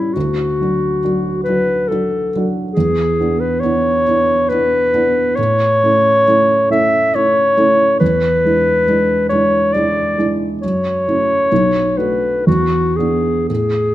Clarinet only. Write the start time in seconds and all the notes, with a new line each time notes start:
Already playing: E4
0.14 F#4
1.44 B4
1.88 A4
2.73 G#4
3.40 B4
3.60 C#5
4.49 B4
5.36 C#5
6.71 E5
7.15 C#5
8.00 B4
9.29 C#5
9.73 D5
10.62 C#5
11.98 B4
12.46 F#4
12.96 G#4
13.49 G#4